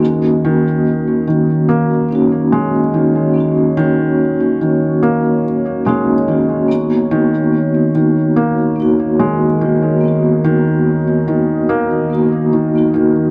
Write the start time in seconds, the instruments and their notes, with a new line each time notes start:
Already playing: ambient pad D#3 D#4
0.00 vibraphone A#3 C#4, ambient pad F#4 C#5
0.05 vibraphone D#4 F#4
0.45 felt piano D#3
1.27 felt piano D#3
1.69 felt piano A#3
2.09 vibraphone A#3 C#4
2.13 vibraphone D#4 F#4
2.52 felt piano G#3
2.94 felt piano D#3
3.34 vibraphone A#3 C#4
3.38 vibraphone D#4 F#4
3.77 felt piano D#3
4.61 felt piano D#3
5.03 felt piano A#3
5.85 felt piano G#3, vibraphone A#3 C#4 D#4 F#4
6.28 felt piano D#3, vibraphone A#3 C#4 D#4 F#4
6.68 ambient pad D#3 D#4 A#4, vibraphone A#3 B3
6.73 vibraphone D#4 F#4
7.11 felt piano D#3
7.95 felt piano D#3
8.36 felt piano A#3
8.76 vibraphone A#3
8.80 vibraphone D#4 F#4
9.20 felt piano G#3
9.61 felt piano D#3
10.01 vibraphone A#3 B3, ambient pad D#5
10.05 vibraphone D#4 F#4
10.44 felt piano D#3
11.28 felt piano D#3
11.69 felt piano A#3
12.10 vibraphone A#3 D#4 F#4
12.53 felt piano D#3
12.76 vibraphone A#3 D#4 F#4
12.94 felt piano D#3